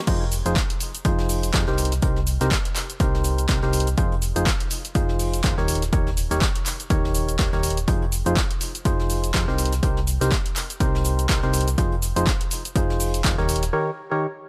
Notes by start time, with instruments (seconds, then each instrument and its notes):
0.07 fm bass F1, synth stab F3 D#4 F4 G#4 C5, kick, closed hi-hat, crash, cabasa
0.21 closed hi-hat
0.32 closed hi-hat, open hi-hat, cabasa
0.46 fm bass F1, synth stab F3 D#4 F4 G#4 C5, closed hi-hat, cabasa
0.55 kick, snare, clap, closed hi-hat, cabasa
0.70 closed hi-hat
0.80 closed hi-hat, open hi-hat, cabasa
0.95 closed hi-hat, cabasa
1.05 fm bass F1, synth stab F3 D#4 F4 G#4 C5, kick, closed hi-hat, cabasa
1.18 snare
1.29 open hi-hat, cabasa
1.43 closed hi-hat, cabasa
1.53 fm bass F2, synth stab C3 D#4 F4 G#4 C5, kick, snare, clap, closed hi-hat, cabasa
1.67 fm bass C2, synth stab C3 D#4 G4 A#4 C5, snare
1.77 closed hi-hat, open hi-hat, cabasa
1.85 closed hi-hat
1.92 snare, closed hi-hat, cabasa
2.02 fm bass C2, synth stab C3 D#4 G4 A#4 C5, kick, closed hi-hat, cabasa
2.16 snare
2.27 closed hi-hat, open hi-hat, cabasa
2.41 fm bass C2, synth stab C3 D#4 G4 A#4 C5, snare, closed hi-hat, cabasa
2.51 kick, snare, clap, closed hi-hat, cabasa
2.65 closed hi-hat
2.76 clap, closed hi-hat, open hi-hat, cabasa
2.90 closed hi-hat, cabasa
3.00 fm bass C2, synth stab C3 D#4 G4 A#4 C5, kick, closed hi-hat, cabasa
3.15 snare
3.24 closed hi-hat, open hi-hat, cabasa
3.38 closed hi-hat, cabasa
3.49 fm bass C2, synth stab C3 D#4 G4 A#4 C5, kick, snare, clap, closed hi-hat, cabasa
3.62 fm bass C2, synth stab C3 D#4 G4 A#4 C5, snare
3.73 closed hi-hat, open hi-hat, cabasa
3.80 closed hi-hat
3.87 closed hi-hat, cabasa
3.98 fm bass F1, synth stab F3 D#4 F4 G#4 C5, kick, closed hi-hat, cabasa
4.12 closed hi-hat
4.22 closed hi-hat, open hi-hat, cabasa
4.36 fm bass F1, synth stab F3 D#4 F4 G#4 C5, closed hi-hat, cabasa
4.46 kick, snare, clap, closed hi-hat, cabasa
4.60 closed hi-hat
4.70 closed hi-hat, open hi-hat, cabasa
4.85 closed hi-hat, cabasa
4.95 fm bass F1, synth stab F3 D#4 F4 G#4 C5, kick, closed hi-hat, cabasa
5.09 snare
5.19 open hi-hat, cabasa
5.34 closed hi-hat, cabasa
5.43 fm bass F1, synth stab D#3 D#4 F4 G#4 C5, kick, snare, clap, closed hi-hat, cabasa
5.58 fm bass D#1, synth stab D#3 D#4 G4 A#4 C#5, snare
5.68 closed hi-hat, open hi-hat, cabasa
5.75 closed hi-hat
5.82 snare, closed hi-hat, cabasa
5.92 fm bass D#1, synth stab D#3 D#4 G4 A#4 C#5, kick, closed hi-hat, cabasa
6.07 snare
6.17 closed hi-hat, open hi-hat, cabasa
6.31 fm bass D#1, synth stab D#3 D#4 G4 A#4 C#5, snare, closed hi-hat, cabasa
6.41 kick, snare, clap, closed hi-hat, cabasa
6.56 closed hi-hat
6.66 clap, closed hi-hat, open hi-hat, cabasa
6.80 closed hi-hat, cabasa
6.90 fm bass D#1, synth stab D#3 D#4 G4 A#4 C#5, kick, closed hi-hat, cabasa
7.05 snare
7.15 closed hi-hat, open hi-hat, cabasa
7.29 closed hi-hat, cabasa
7.39 fm bass D#1, synth stab D#3 D#4 G4 A#4 C#5, kick, snare, clap, closed hi-hat, cabasa
7.53 fm bass D#1, synth stab D#3 D#4 G4 A#4 C#5, snare
7.63 closed hi-hat, open hi-hat, cabasa
7.70 closed hi-hat
7.77 closed hi-hat, cabasa
7.88 fm bass F1, synth stab F3 D#4 F4 G#4 C5, kick, closed hi-hat, cabasa
8.02 closed hi-hat
8.12 closed hi-hat, open hi-hat, cabasa
8.26 fm bass F1, synth stab F3 D#4 F4 G#4 C5, closed hi-hat, cabasa
8.36 kick, snare, clap, closed hi-hat, cabasa
8.51 closed hi-hat
8.61 closed hi-hat, open hi-hat, cabasa
8.75 closed hi-hat, cabasa
8.85 fm bass F1, synth stab F3 D#4 F4 G#4 C5, kick, closed hi-hat, cabasa
8.99 snare
9.10 open hi-hat, cabasa
9.24 closed hi-hat, cabasa
9.34 fm bass F2, synth stab C3 D#4 F4 G#4 C5, kick, snare, clap, closed hi-hat, cabasa
9.48 fm bass C2, synth stab C3 D#4 G4 A#4 C5, snare
9.58 closed hi-hat, open hi-hat, cabasa
9.65 closed hi-hat
9.72 snare, closed hi-hat, cabasa
9.83 fm bass C2, synth stab C3 D#4 G4 A#4 C5, kick, closed hi-hat, cabasa
9.97 snare
10.07 closed hi-hat, open hi-hat, cabasa
10.21 fm bass C2, synth stab C3 D#4 G4 A#4 C5, snare, closed hi-hat, cabasa
10.31 kick, snare, clap, closed hi-hat, cabasa
10.46 closed hi-hat
10.56 clap, closed hi-hat, open hi-hat, cabasa
10.70 closed hi-hat, cabasa
10.80 fm bass C2, synth stab C3 D#4 G4 A#4 C5, kick, closed hi-hat, cabasa
10.95 snare
11.05 closed hi-hat, open hi-hat, cabasa
11.19 closed hi-hat, cabasa
11.29 fm bass C2, synth stab C3 D#4 G4 A#4 C5, kick, snare, clap, closed hi-hat, cabasa
11.43 fm bass C2, synth stab C3 D#4 G4 A#4 C5, snare
11.54 closed hi-hat, open hi-hat, cabasa
11.61 closed hi-hat
11.68 closed hi-hat, cabasa
11.78 fm bass F1, synth stab F3 D#4 F4 G#4 C5, kick, closed hi-hat, cabasa
11.92 closed hi-hat
12.02 closed hi-hat, open hi-hat, cabasa
12.16 fm bass F1, synth stab F3 D#4 F4 G#4 C5, closed hi-hat, cabasa
12.27 kick, snare, clap, closed hi-hat, cabasa
12.41 closed hi-hat
12.51 closed hi-hat, open hi-hat, cabasa
12.65 closed hi-hat, cabasa
12.75 fm bass F1, synth stab F3 D#4 F4 G#4 C5, kick, closed hi-hat, cabasa
12.90 snare
13.00 open hi-hat, cabasa
13.14 closed hi-hat, cabasa
13.24 fm bass F1, synth stab D#3 D#4 F4 G#4 C5, kick, snare, clap, closed hi-hat, cabasa
13.38 fm bass D#1, synth stab D#3 D#4 G4 A#4 C#5, snare
13.49 closed hi-hat, open hi-hat, cabasa
13.56 closed hi-hat
13.63 snare, closed hi-hat, cabasa
13.73 synth stab D#3 D#4 G4 A#4 C#5
14.11 synth stab D#3 D#4 G4 A#4 C#5